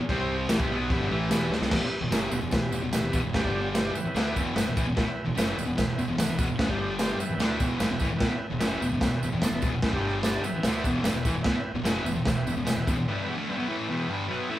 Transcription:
0.00 muted fingered electric bass stroke, muted distorted electric guitar stroke
0.09 C2 C3 G3 C4 G4 C5 G5, kick, crash
0.49 A1 A2 E3 G4 B4 E5, snare, tambourine, crash
0.60 C2 C3 G3, kick
0.70 B1 B2 F#3 B3
0.89 E1 E2 B2 G4 B4 E5, kick, crash
1.00 G1 G2 D3
1.09 A1 A2 E3 A3
1.29 E1 E2 B2 E3 G4 B4 E5, snare, tambourine, crash
1.50 D2 D3 A3, snare
1.59 C2 C3 G3, snare
1.70 E1 E2 B2 G4 B4, kick, snare, crash
1.74 E5
1.81 muted distorted electric guitar stroke, muted fingered electric bass stroke
2.01 E1 E2 B2
2.11 F#1 F#2 C#3 F#3 G4 B4 E5, snare, tambourine, crash
2.32 E1 E2 B2, tambourine
2.40 E1 E2 B2
2.51 E1 E2 B2 G4 B4, kick, snare, tambourine, crash
2.56 E5
2.72 E1 E2 B2, tambourine
2.82 E1 E2 B2
2.92 E1 E2 B2 G4 B4 E5, snare, tambourine, crash
3.02 E1 E2 B2
3.12 E1 E2 B2, kick, tambourine
3.22 E1 E2 B2
3.33 F#1 F#2 C#3 G4 B4 G5, kick, snare, crash
3.43 G1 G2 D3 G3 G4 D5 G5, kick
3.72 G4 D5 G5, snare, tambourine, crash
3.94 B4 E5 G5, muted distorted electric guitar stroke, muted fingered electric bass stroke, tambourine
4.05 muted fingered electric bass stroke, muted distorted electric guitar stroke
4.14 D2 D3 A3 D4, snare, tambourine, crash
4.34 E1 E2 B2 E3, kick, tambourine
4.54 G1 G2 D3 B4 E5 G5, snare, tambourine, crash
4.66 E1 E2 B2
4.76 A1 A2 E3, kick, tambourine
4.87 E1 E2 B2
4.95 E1 E2 B2 B4 E5, kick, snare, crash
5.00 G5
5.06 muted distorted electric guitar stroke, muted fingered electric bass stroke
5.26 E1 E2 B2
5.35 F#1 F#2 C#3 F#3 B4 E5 G5, snare, tambourine, crash
5.57 E1 E2 B2, tambourine
5.66 E1 E2 B2
5.77 E1 E2 B2 B4 E5 G5, kick, snare, tambourine, crash
5.98 E1 E2 B2, tambourine
6.08 E1 E2 B2
6.18 E1 E2 B2 B4 E5 F#5, snare, tambourine, crash
6.28 E1 E2 B2
6.38 E1 E2 B2, kick, tambourine
6.48 E1 E2 B2
6.58 F#1 F#2 C#3 B4 E5 F#5, kick, snare, crash
6.69 G1 G2 D3 G3 G4 D5 G5, kick
6.99 G4 D5 G5, snare, tambourine, crash
7.19 B4 E5 G5, muted distorted electric guitar stroke, muted fingered electric bass stroke, tambourine
7.29 muted fingered electric bass stroke, muted distorted electric guitar stroke
7.38 D2 D3 A3 D4, snare, tambourine, crash
7.59 E1 E2 B2 E3, kick, tambourine
7.78 G1 G2 D3 B4 E5 G5, snare, tambourine, crash
7.90 E1 E2 B2
7.99 A1 A2 E3, kick, tambourine
8.10 E1 E2 B2
8.17 E1 E2 B4 E5 G5, kick, snare, crash
8.22 B2
8.31 muted distorted electric guitar stroke, muted fingered electric bass stroke
8.50 E1 E2 B2
8.58 F#1 F#2 C#3 B4 E5 G5, snare, tambourine, crash
8.62 F#3
8.81 E1 E2 B2, tambourine
8.92 E1 E2 B2
9.01 E1 E2 B2 B4 E5 G5, kick, snare, tambourine, crash
9.23 E1 E2 B2, tambourine
9.32 E1 E2 B2
9.41 E1 E2 B2 B4 E5 A5, snare, tambourine, crash
9.51 E1 E2 B2
9.62 E1 E2 B2, kick, tambourine
9.72 E1 E2 B2
9.82 F#1 F#2 C#3 B4 E5 G5, kick, snare, crash
9.93 G1 G2 D3 G3 G4 D5 G5, kick
10.23 G4 D5 A5, snare, tambourine, crash
10.41 B4 E5 G5, muted fingered electric bass stroke, muted distorted electric guitar stroke, tambourine
10.53 muted fingered electric bass stroke, muted distorted electric guitar stroke
10.63 D2 D3, snare, tambourine, crash
10.68 A3 D4
10.84 E1 E2 B2 E3, kick, tambourine
11.03 G1 G2 D3 B4 E5 G5, snare, tambourine, crash
11.14 E1 E2 B2
11.25 A1 A2 E3, kick, tambourine
11.33 E1 E2 B2
11.43 E1 E2 B2 B4 E5 G5, kick, snare, crash
11.53 muted fingered electric bass stroke, muted distorted electric guitar stroke
11.74 E1 E2 B2
11.83 F#1 F#2 C#3 F#3 B4 E5 G5, snare, tambourine, crash
12.04 E1 E2 B2, tambourine
12.14 E1 E2 B2
12.25 E1 E2 B2 B4 E5 G5, kick, snare, tambourine, crash
12.47 E1 E2 B2, tambourine
12.56 E1 E2 B2
12.64 E1 E2 B2 B4 E5 G5, snare, tambourine, crash
12.76 E1 E2 B2
12.87 E1 E2 B2, kick, tambourine
12.96 E1 E2 B2
13.08 G2 D3 G3 B4 E5 G5
13.26 E2 B2
13.37 D3 A3
13.48 G2 D3 B4 E5 G5
13.57 B2 F#3
13.68 A2 E3 A3
13.88 E2 B2 E3 B4 E5 G5
14.09 G2 D3 G3
14.28 B2 F#3 B3 B4 E5 G5
14.50 A2 E3 A3

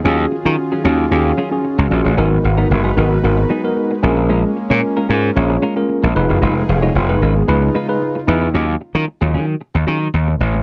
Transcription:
Already playing: G#4
0.05 D#2 D#3 F#3 C#4 F4 F#4 G#4
0.19 muted clean electric guitar stroke
0.32 muted clean electric guitar stroke
0.45 D#3 F#3 C#4 F4 F#4 G#4 A#4
0.58 muted clean electric guitar stroke
0.72 F#3 C#4 F4 G#4
0.84 D#2 F#3 C#4 F4 F#4 G#4
0.99 muted clean electric guitar stroke
1.11 D#2 C#4 F4 F#4 G#4, muted clean electric guitar stroke
1.25 muted clean electric guitar stroke
1.37 F#3 C#4 F4 G#4
1.52 C#4 F4 F#4 G#4, muted clean electric guitar stroke
1.64 muted clean electric guitar stroke
1.78 C#2, muted clean electric guitar stroke
1.91 A#1 C#4 F4 F#4 G#4
2.05 A1, muted clean electric guitar stroke
2.17 G#1 F#3 G#3 B3 D#4 F#4 G#4 A#4 B4
2.31 muted clean electric guitar stroke
2.44 G#1, muted clean electric guitar stroke
2.58 F#3 B3 D#4 F#4 A#4
2.70 F#1, muted clean electric guitar stroke
2.84 F#3 B3 D#4 G#4
2.97 G#1 F#3 B3 D#4 F#4 G#4 A#4
3.11 muted clean electric guitar stroke
3.23 G#1 B3 D#4 F#4 A#4, muted clean electric guitar stroke
3.37 muted clean electric guitar stroke
3.50 F#3 B3 D#4 G#4
3.64 B3 D#4 F#4 A#4, muted clean electric guitar stroke
3.77 muted clean electric guitar stroke
3.91 muted clean electric guitar stroke
4.03 A#1 A#3 C#4 F4 G#4 A#4
4.17 muted clean electric guitar stroke
4.30 G#3 C#4 F4 A#4
4.44 muted clean electric guitar stroke
4.56 muted clean electric guitar stroke
4.70 A#2 G#3 C#4 F4 G#4 A#4 C#5
4.82 muted clean electric guitar stroke
4.97 G#3 C#4 F4 A#4
5.09 G#2 G#3 C#4 F4 G#4 A#4
5.23 muted clean electric guitar stroke
5.35 A#1 C#4 F4 G#4 C#5, muted clean electric guitar stroke
5.50 muted clean electric guitar stroke
5.62 G#3 C#4 F4 A#4
5.76 C#4 F4 G#4 A#4, muted clean electric guitar stroke
5.89 muted clean electric guitar stroke
6.03 A#1, muted clean electric guitar stroke
6.15 F1 F3 B3 D#4 F4 G#4 B4
6.29 F#1, muted clean electric guitar stroke
6.42 F1 G#3 D#4 F4 B4
6.56 muted clean electric guitar stroke
6.68 F1 G#4 F5, muted clean electric guitar stroke
6.82 G#3 D#4 F4 C#5 D#5
6.95 F1 F4 C#5
7.09 G#3 D#4 F4 B4
7.22 G#1 G#3 C#4 D#4 F4 A#4 B4
7.36 B3 G#4, muted clean electric guitar stroke
7.48 C#2 C#3 D#4 F4 G#4 B4, muted clean electric guitar stroke
7.62 muted clean electric guitar stroke
7.75 G#3 D#4 F4 B4
7.88 D#4 F4 G#4 B4, muted clean electric guitar stroke
8.02 muted clean electric guitar stroke
8.15 muted clean electric guitar stroke
8.27 E2 D#4 F4 G#4 B4
8.42 muted clean electric guitar stroke
8.54 D#2 F#3 C#4 F4 G#4
8.68 muted clean electric guitar stroke
8.81 muted clean electric guitar stroke
8.95 D#3 F#3 C#4 F4 A#4
9.07 muted clean electric guitar stroke
9.21 D#2 F#3 C#4 F4 G#4
9.34 D#3 F#3 C#4 F4 G#4
9.48 muted clean electric guitar stroke
9.61 muted clean electric guitar stroke
9.75 D#2, muted clean electric guitar stroke
9.87 D#3 F#3 C#4 F4 G#4
10.01 muted clean electric guitar stroke
10.14 D#2, muted clean electric guitar stroke
10.28 muted clean electric guitar stroke
10.40 A1
10.54 muted clean electric guitar stroke

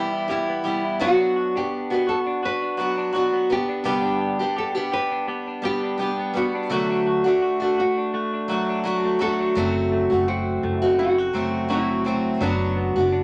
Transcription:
Already playing: E3 G3 B3 E4 G4
0.14 E4
0.28 E3 G3 B3 E4 G4
0.49 B3
0.64 E3 G3 B3 E4 G4
0.85 E4
0.99 F#3 B3 D4 F#4
1.21 D4
1.36 F#4
1.56 B3 D4 G4
1.90 B3 D4 F#4
2.07 F#4 A4
2.27 D4
2.43 F#4 B4
2.62 D4
2.77 F#3 B3 D4 F#4
2.98 D4
3.13 F#3 B3 D4 F#4
3.33 B3
3.50 B3 D4 G4
3.69 D4
3.84 G2 D3 G3 B3 D4 G4
4.05 D4
4.21 G4
4.39 G3 B3 D4 G4
4.57 G4 A4
4.75 G3 B3 D4 G4
4.92 G4 B4
5.12 D4
5.28 B3 G4
5.47 D4
5.62 G3 B3 D4 G4
5.83 D4
5.98 G3 B3 D4 G4
6.19 B3
6.33 G3 B3 D4 F#4
6.55 D4
6.69 D3 F#3 A3 D4 F#4
6.90 D4
7.06 F#4
7.24 A3 D4 F#4
7.42 F#4
7.60 A3 D4 F#4
7.78 F#4
7.98 D4
8.14 A3 F#4
8.33 D4
8.48 F#3 A3 D4 F#4
8.69 D4
8.84 F#3 A3 D4 F#4
9.05 A3
9.19 F#3 A3 D4 F#4 A4
9.40 D4
9.55 F#1 F#3 A3 C4 F#4
9.92 A3
10.10 F#1 A3 C4 F#4
10.28 C4 F#4
10.63 F#1 A3
10.82 A3 C4 F#4
10.99 E4 F#4
11.18 F#4
11.33 F#1 F#3 A3 C4 F#4
11.69 F#3 A3 C4 E4 F#4
12.05 F#3 A3 C4 F#4
12.41 F#1 F#3 B3 D4 F#4
12.77 B3
12.96 F#1 B3 D4 F#4
13.13 D4

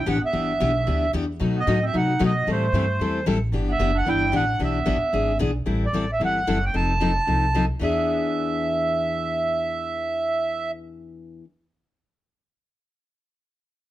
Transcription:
0.05 A1 E3 B3 D4 G4 F#5
0.21 B3, muted upright bass stroke
0.25 E5
0.33 G1 E3 B3 D4 G4
0.60 B1 E3 B3 D4 G4
0.87 D2 E3 B3 D4 G4
1.13 E2 E3 B3 D4 G4
1.39 B2 F#3 A3 D#4 F#4
1.57 B3 D#5
1.67 A2 B2 F#3 A3 D#4 F#4
1.82 C4 E5
1.93 B2 C3 F#3 A3 D#4 F#4 F#5
2.19 B2 F#3 A3 B3 D#4 F#4
2.25 D#5
2.46 A2 E3 G3 A3 C4 E4 A4
2.52 C5
2.72 G2 E3 G3 C4 E4 A4
2.99 E2 E3 G3 C4 E4 A4
3.26 A1 E3 G3 C4 E4 A4
3.52 G1 E3 B3 D4 G4
3.68 B3 E5
3.79 F#1 E3 B3 D4 G4
3.94 D4 F#5
4.05 G1 E3 B3 D4 E4 G4 G5
4.32 A1 E3 B3 D4 G4 F#5
4.59 B1 E3 B3 D4 G4
4.64 E5
4.85 A1 E3 B3 D4 G4
5.01 muted upright bass stroke
5.13 G#1 E3 B3 D4 G#4
5.39 B1 E3 B3 D4 G#4
5.66 A1 E3 G3 C4 E4 A4
5.86 D5
5.93 A1 E3 G3 C4 E4 A4
6.13 E5
6.20 G1 E3 G3 C4 E4 A4
6.25 F#5
6.47 F#1 E3 G3 C4 E4 A4
6.65 G5
6.74 F1 F3 C4 D#4 A4 A5
7.00 F3 C4 D#4 A4
7.27 C2 F3 C4 D#4 A4
7.55 F3 C4 D#4 A4
7.79 E2 E3 B3 D4 G#4 E5

